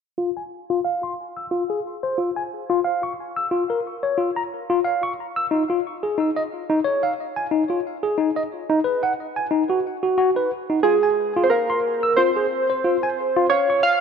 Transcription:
0.18 0.29 F4 medium
0.37 0.42 G#5 medium
0.70 0.79 F4 medium
0.85 1.02 F5 medium
1.03 1.12 C6 medium
1.37 1.46 E6 medium
1.51 1.63 F4 medium
1.70 1.79 G#4 medium
2.03 2.17 C5 medium
2.18 2.29 F4 medium
2.36 2.42 G#5 medium
2.70 2.79 F4 loud
2.84 3.02 F5 medium
3.03 3.12 C#6 medium
3.36 3.46 E6 medium
3.51 3.63 F4 medium
3.70 3.79 A#4 medium
4.03 4.17 C#5 medium
4.18 4.29 F4 medium
4.36 4.42 A#5 medium
4.70 4.79 F4 medium
4.84 5.02 F5 medium
5.03 5.12 C#6 medium
5.36 5.46 E6 medium
5.51 5.63 D#4 medium
5.70 5.79 F4 medium
6.03 6.17 G#4 medium
6.18 6.29 D#4 medium
6.36 6.42 D#5 medium
6.70 6.79 D#4 medium
6.84 7.02 C#5 medium
7.03 7.12 F5 medium
7.36 7.46 G#5 medium
7.51 7.63 D#4 medium
7.70 7.79 F4 medium
8.03 8.17 G#4 medium
8.18 8.29 D#4 medium
8.36 8.42 D#5 medium
8.70 8.79 D#4 medium
8.84 9.02 B4 medium
9.03 9.12 F#5 medium
9.36 9.46 G#5 medium
9.51 9.63 D#4 medium
9.70 9.79 F#4 medium
10.03 10.16 F#4 medium
10.18 10.29 F#4 medium
10.36 10.50 B4 medium
10.70 10.79 D#4 medium
10.83 10.96 F4 medium
10.83 11.46 G#4 medium
11.03 11.09 G#5 medium
11.36 11.46 F4 medium
11.44 11.50 C5 medium
11.50 12.19 A#4 medium
11.50 11.68 F5 medium
11.70 11.79 C6 medium
12.03 12.12 E6 medium
12.16 12.29 F4 medium
12.16 13.55 C5 medium
12.36 12.46 G#4 medium
12.70 12.83 C5 medium
12.84 12.96 F4 medium
13.03 13.09 G#5 medium
13.36 13.46 F4 loud
13.50 13.85 C#5 loud
13.50 13.68 F5 medium
13.70 13.79 C#6 medium
13.83 14.01 F5 loud

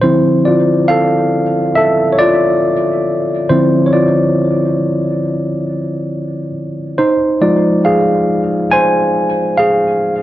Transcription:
0.02 0.63 D3 soft
0.02 0.63 F3 soft
0.02 0.63 C4 medium
0.02 0.43 E4 medium
0.02 0.47 C5 medium
0.45 0.87 F4 medium
0.45 0.90 D5 medium
0.88 1.73 A4 medium
0.88 1.72 F5 medium
1.75 2.12 A4 medium
1.75 2.14 E5 medium
2.13 2.19 C#5 medium
2.19 3.46 F4 medium
2.19 3.45 D5 medium
3.49 4.76 D3 medium
3.49 4.77 F3 soft
3.49 4.77 C4 medium
3.49 3.86 E4 medium
3.49 3.88 C5 medium
3.86 3.93 C#5 medium
3.93 6.51 F4 medium
3.93 6.50 D5 medium
6.98 7.39 D#4 medium
6.98 7.43 C5 medium
7.41 8.68 F3 soft
7.41 8.68 G#3 soft
7.41 8.68 D#4 medium
7.41 7.82 F4 medium
7.41 7.86 D5 medium
7.85 8.68 G#4 medium
7.85 8.68 F5 medium
8.71 9.55 C5 medium
8.71 9.61 G#5 loud
9.57 10.22 G#4 medium
9.57 10.22 F5 medium

